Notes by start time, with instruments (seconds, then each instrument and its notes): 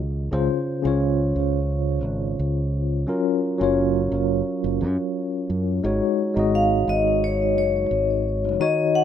Already playing: fingered electric bass C#2
0.31 fingered electric bass C#2, tine electric piano C#3 C#4 F4 C5
0.82 fingered electric bass C#2, tine electric piano C#3 C#4 F4
0.87 tine electric piano C#5
1.36 fingered electric bass C#2
2.05 fingered electric bass G#1
2.39 fingered electric bass C#2
3.07 tine electric piano F#3 C#4 F4 A#4
3.58 fingered electric bass F#1, tine electric piano F#3 C#4 F4
3.63 tine electric piano C#5
4.12 fingered electric bass F#1
4.64 fingered electric bass F#1
4.81 fingered electric bass F#2
5.50 fingered electric bass F#2
5.84 fingered electric bass G#1, tine electric piano G#3 D#4 F#4 C#5
6.34 fingered electric bass G#1, tine electric piano G#3 D#4 F#4
6.39 tine electric piano D#5
6.55 vibraphone F5
6.88 fingered electric bass G#1, vibraphone D#5
7.24 vibraphone C#5
7.56 fingered electric bass F#1, vibraphone C#5
7.91 fingered electric bass G#1
8.60 tine electric piano D#3 D#4 F#4 C#5, vibraphone D#5
8.95 vibraphone F#5